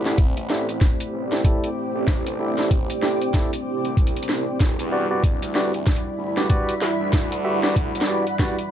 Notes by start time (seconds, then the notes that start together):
Already playing: A3 C4 E4 G4 C5 D5 F#5 B5
0.05 C2 E4 G4 A4 D5, snare
0.18 kick, closed hi-hat
0.37 A1, closed hi-hat
0.50 E4 G4 A4 D5, snare
0.69 closed hi-hat
0.81 kick, snare, closed hi-hat
1.00 closed hi-hat
1.13 A1
1.32 E4 G4 A4 D5, snare, closed hi-hat
1.45 E4 G4 A4 D5, kick, closed hi-hat
1.64 closed hi-hat
1.95 A1
2.08 kick, snare, closed hi-hat
2.27 closed hi-hat
2.39 E4 G4 A4 E5
2.58 E4 G4 A4 D5, snare
2.71 kick, closed hi-hat
2.90 closed hi-hat
3.02 E4 G4 A4 D5, snare
3.22 closed hi-hat
3.34 E4 G4 A4 D5, kick, snare, closed hi-hat
3.53 closed hi-hat
3.85 C2, closed hi-hat
3.97 kick, closed hi-hat
4.07 closed hi-hat
4.16 closed hi-hat
4.23 closed hi-hat
4.29 snare
4.60 E1 G3 E4 D5, kick, snare, closed hi-hat
4.79 E2, closed hi-hat
4.92 F#4 G4 B4 D5
4.99 B5
5.11 E1 F#4 G4 B4 D5
5.24 kick, closed hi-hat
5.42 D2 F#5, closed hi-hat
5.55 F#4 G4 B4 D5, snare
5.74 closed hi-hat
5.87 kick, snare, closed hi-hat
5.96 closed hi-hat
6.18 D2
6.37 F#4 G4 B4 D5, snare, closed hi-hat
6.50 F#4 G4 B4 D5, kick, closed hi-hat
6.69 closed hi-hat
6.82 snare
7.00 D2
7.13 kick, snare, closed hi-hat
7.32 closed hi-hat
7.44 F#4 G4 B4 E5
7.63 F#4 G4 B4 D5, snare
7.76 kick, closed hi-hat
7.95 E1, closed hi-hat
8.01 snare
8.08 F#4 G4 B4 D5
8.27 closed hi-hat
8.39 F#4 G4 B4 D5, kick, snare, closed hi-hat
8.59 closed hi-hat